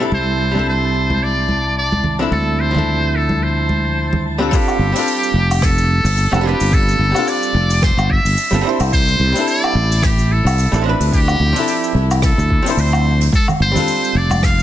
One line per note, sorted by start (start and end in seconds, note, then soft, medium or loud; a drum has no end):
0.00 0.50 G3 medium
0.00 0.51 C4 medium
0.00 0.52 D4 medium
0.00 0.52 E4 medium
0.00 0.53 A4 medium
0.00 4.54 A5 medium
0.00 4.54 A6 medium
0.12 2.30 C2 medium
0.12 0.64 C5 medium
0.12 high conga medium
0.51 2.15 G3 medium
0.51 2.16 C4 medium
0.51 2.16 D4 medium
0.56 2.17 E4 medium
0.56 2.18 A4 medium
0.56 high conga medium
0.69 1.25 C5 medium
1.10 high conga medium
1.23 1.77 D5 medium
1.49 high conga medium
1.78 2.18 D5 medium
1.92 high conga medium
2.04 low conga medium
2.19 2.70 F3 medium
2.19 2.71 C4 medium
2.19 2.72 D4 medium
2.19 2.72 E4 medium
2.19 2.73 A4 medium
2.31 4.50 D2 medium
2.31 2.61 A4 medium
2.31 high conga medium
2.60 3.17 C5 medium
2.71 4.35 F3 medium
2.71 4.36 C4 medium
2.71 4.36 D4 medium
2.75 4.37 E4 medium
2.75 4.38 A4 medium
2.75 high conga medium
2.75 low conga medium
3.16 3.44 A4 medium
3.29 high conga medium
3.43 4.25 C5 medium
3.69 high conga medium
4.13 high conga medium
4.13 low conga medium
4.38 4.50 G3 medium
4.38 4.51 C4 medium
4.38 4.51 D4 medium
4.38 4.52 F4 medium
4.38 4.54 A4 medium
4.48 4.89 G3 loud
4.48 4.56 A4 medium
4.52 4.89 C4 medium
4.52 4.89 D4 medium
4.52 4.90 F4 medium
4.52 5.66 G4 medium
4.52 4.91 A4 loud
4.52 kick loud
4.52 open hi-hat medium
4.52 cabasa medium
4.68 cabasa soft
4.68 low woodblock medium
4.79 4.91 G1 medium
4.92 6.28 G3 medium
4.92 6.29 C4 medium
4.92 6.30 D4 medium
4.92 open hi-hat medium
4.96 6.31 F4 medium
4.96 6.32 A4 medium
4.96 cabasa medium
5.08 open hi-hat medium
5.08 cabasa medium
5.23 cabasa soft
5.34 5.99 F1 medium
5.51 open hi-hat medium
5.51 cabasa medium
5.51 low woodblock medium
5.62 6.48 A4 medium
5.62 kick loud
5.62 cross-stick medium
5.62 open hi-hat medium
5.62 cabasa medium
5.78 cabasa medium
6.04 6.25 G1 medium
6.04 open hi-hat medium
6.04 cabasa medium
6.17 open hi-hat medium
6.17 cabasa medium
6.32 6.53 F1 loud
6.32 6.40 G3 medium
6.32 6.42 C4 medium
6.32 6.42 D4 medium
6.32 6.43 A4 medium
6.32 cabasa soft
6.32 low woodblock medium
6.41 7.10 G3 medium
6.41 7.11 C4 medium
6.45 7.12 D4 medium
6.45 7.13 F4 medium
6.45 6.75 G4 medium
6.45 7.14 B4 loud
6.60 6.96 G1 medium
6.60 open hi-hat medium
6.60 cabasa medium
6.72 7.30 A4 loud
6.72 kick loud
6.72 open hi-hat medium
6.72 cabasa medium
6.88 cabasa soft
6.99 7.12 G1 medium
7.12 8.48 G3 medium
7.12 8.49 C4 medium
7.12 8.50 D4 medium
7.12 low woodblock medium
7.16 8.51 F4 medium
7.16 8.52 A4 medium
7.16 open hi-hat medium
7.16 cabasa medium
7.28 7.83 D5 loud
7.28 open hi-hat medium
7.28 cabasa medium
7.43 cabasa medium
7.54 7.92 F1 medium
7.70 open hi-hat medium
7.70 cabasa medium
7.82 8.12 C5 medium
7.82 kick loud
7.82 cross-stick medium
7.82 open hi-hat medium
7.82 cabasa medium
7.97 8.18 G1 medium
7.97 cabasa medium
7.97 low woodblock medium
8.10 8.66 E5 loud
8.10 kick medium
8.25 8.34 G1 medium
8.25 open hi-hat medium
8.25 cabasa medium
8.37 open hi-hat medium
8.37 cabasa medium
8.51 8.62 G1 medium
8.51 8.60 G3 medium
8.51 8.61 C4 medium
8.51 8.63 F4 medium
8.51 8.63 A4 medium
8.51 cabasa medium
8.61 9.30 G3 medium
8.61 9.31 C4 medium
8.61 9.32 D4 medium
8.67 9.33 E4 medium
8.67 9.34 C5 loud
8.80 9.15 C2 loud
8.80 open hi-hat medium
8.80 cabasa medium
8.80 low woodblock medium
8.92 9.50 C5 loud
8.92 kick loud
8.92 open hi-hat medium
8.92 cabasa medium
9.08 cabasa soft
9.20 9.32 C2 loud
9.32 10.69 G3 medium
9.32 10.70 C4 medium
9.32 10.70 D4 medium
9.32 open hi-hat medium
9.37 10.71 E4 medium
9.37 10.73 A4 medium
9.37 cabasa medium
9.47 10.06 D5 loud
9.47 open hi-hat medium
9.47 cabasa medium
9.64 cabasa medium
9.64 low woodblock medium
9.75 10.40 A1 medium
9.92 open hi-hat medium
9.92 cabasa medium
10.03 10.33 G4 medium
10.03 kick loud
10.03 cross-stick medium
10.03 open hi-hat medium
10.03 cabasa medium
10.19 cabasa medium
10.32 10.86 A4 medium
10.45 10.66 C2 loud
10.45 open hi-hat medium
10.45 cabasa medium
10.45 low woodblock medium
10.58 open hi-hat medium
10.58 cabasa medium
10.72 10.93 A1 loud
10.72 10.81 G3 medium
10.72 10.82 C4 medium
10.72 10.83 D4 medium
10.72 10.83 E4 medium
10.72 10.84 A4 medium
10.72 cabasa soft
10.82 11.50 F3 medium
10.82 11.52 C4 medium
10.86 11.52 D4 medium
10.86 11.54 E4 medium
10.86 11.54 B4 loud
11.00 11.36 D2 medium
11.00 open hi-hat medium
11.00 cabasa medium
11.13 11.92 G4 loud
11.13 kick loud
11.13 open hi-hat medium
11.13 cabasa medium
11.28 cabasa medium
11.28 low woodblock medium
11.40 11.52 D2 medium
11.53 12.61 F3 medium
11.53 12.62 C4 medium
11.53 12.63 D4 medium
11.53 open hi-hat medium
11.53 cabasa medium
11.58 12.64 E4 medium
11.58 12.65 A4 medium
11.67 open hi-hat medium
11.67 cabasa medium
11.84 cabasa medium
11.95 12.32 C2 medium
12.11 open hi-hat medium
12.11 cabasa medium
12.11 low woodblock medium
12.22 12.81 A4 medium
12.22 kick loud
12.22 cross-stick medium
12.22 open hi-hat medium
12.22 cabasa medium
12.38 12.58 D2 loud
12.38 cabasa soft
12.50 kick medium
12.62 13.30 F3 medium
12.62 13.31 C4 medium
12.62 13.32 D4 medium
12.62 open hi-hat medium
12.67 13.33 E4 medium
12.67 13.33 C5 loud
12.67 cabasa medium
12.77 13.28 D2 medium
12.77 13.22 C5 medium
12.77 open hi-hat medium
12.77 cabasa medium
12.93 cabasa medium
12.93 low woodblock medium
13.21 open hi-hat medium
13.21 cabasa medium
13.33 13.47 A4 loud
13.33 14.63 C6 medium
13.33 14.63 C7 medium
13.33 kick loud
13.33 open hi-hat medium
13.33 high conga medium
13.33 cabasa medium
13.48 low conga medium
13.48 cabasa medium
13.48 low woodblock medium
13.60 13.72 G1 loud
13.60 14.18 C5 loud
13.72 14.63 G3 medium
13.72 14.63 C4 medium
13.72 14.63 D4 medium
13.72 high conga medium
13.72 low conga medium
13.76 14.63 F4 medium
13.76 14.63 A4 medium
13.76 open hi-hat medium
13.76 cabasa medium
13.87 open hi-hat medium
13.87 cabasa medium
14.04 cabasa medium
14.15 14.63 F1 medium
14.15 14.46 D5 loud
14.30 open hi-hat medium
14.30 high conga medium
14.30 cabasa medium
14.30 low woodblock medium
14.43 14.63 F5 loud
14.43 kick loud
14.43 cross-stick medium
14.43 open hi-hat medium
14.43 cabasa medium
14.59 cabasa soft